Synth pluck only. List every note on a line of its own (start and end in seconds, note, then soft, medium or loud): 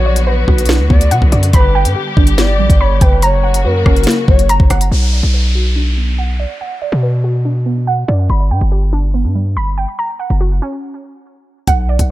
0.00 0.48 B3 medium
0.00 0.27 D4 medium
0.00 1.10 F#5 loud
0.06 1.31 D5 medium
0.27 1.54 B4 medium
0.48 1.54 F#4 medium
0.69 1.54 D4 medium
0.90 1.53 B3 medium
1.11 1.54 F#5 loud
1.32 1.53 D5 medium
1.54 2.79 B5 loud
1.75 3.00 G5 medium
1.96 3.22 G4 medium
2.17 3.22 D4 loud
2.38 3.23 B3 medium
2.59 3.23 G3 medium
2.81 3.23 B5 loud
3.02 3.23 G5 medium
3.23 4.48 A#5 loud
3.43 4.69 F#5 medium
3.65 4.91 F#4 medium
3.86 4.92 C#4 loud
4.07 4.92 A#3 medium
4.28 4.92 F#3 medium
4.49 4.92 A#5 loud
4.70 4.90 F#5 medium
5.13 6.38 D5 medium
5.34 6.61 B4 medium
5.55 6.82 F#4 medium
5.76 7.03 D4 medium
5.97 7.24 B3 medium
6.18 6.60 F#5 loud
6.39 6.81 D5 medium
6.61 7.86 F#5 loud
6.82 8.07 D5 medium
7.03 8.30 B4 medium
7.24 8.30 F#4 medium
7.45 8.30 D4 medium
7.66 8.29 B3 medium
7.87 8.30 F#5 loud
8.08 8.29 D5 medium
8.30 9.55 B5 loud
8.51 9.76 G5 medium
8.72 9.99 G4 medium
8.93 9.98 D4 medium
9.14 9.99 B3 medium
9.35 9.99 G3 medium
9.57 9.99 B5 medium
9.78 9.99 G5 medium
9.99 11.25 A#5 medium
10.19 11.46 F#5 medium
10.41 11.67 F#4 medium
10.62 11.68 C#4 medium
11.68 12.11 F#5 loud
11.89 12.11 D5 medium